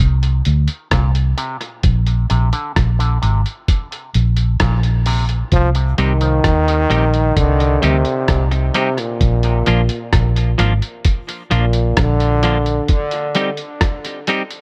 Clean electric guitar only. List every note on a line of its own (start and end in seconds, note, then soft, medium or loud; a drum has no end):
5.98 6.12 G3 medium
5.98 6.12 C4 medium
5.98 6.12 D#4 medium
5.98 6.12 G4 medium
6.90 7.04 G3 medium
6.90 7.04 C4 medium
6.90 7.04 D#4 medium
6.90 7.04 G4 medium
7.82 7.96 G3 medium
7.82 7.96 C4 medium
7.82 7.97 D#4 medium
7.82 7.97 G4 medium
8.51 muted clean electric guitar stroke soft
8.75 8.88 G3 medium
8.75 8.88 C4 medium
8.75 8.88 D#4 medium
8.75 8.89 G4 medium
9.67 9.80 F3 medium
9.67 9.80 A#3 medium
9.67 9.81 D4 medium
9.67 9.81 F4 medium
10.58 10.72 F3 medium
10.58 10.72 A#3 medium
10.58 10.72 D4 medium
10.58 10.73 F4 medium
11.51 11.64 F3 medium
11.51 11.65 A#3 medium
11.51 11.65 D4 medium
11.51 11.65 F4 medium
12.43 12.57 F3 loud
12.43 12.57 A#3 medium
12.43 12.57 D4 medium
12.43 12.57 F4 loud
13.35 13.49 G3 medium
13.35 13.49 C4 medium
13.35 13.49 D#4 medium
13.35 13.50 G4 medium
14.28 14.41 G3 medium
14.28 14.42 C4 medium
14.28 14.42 D#4 loud
14.28 14.42 G4 loud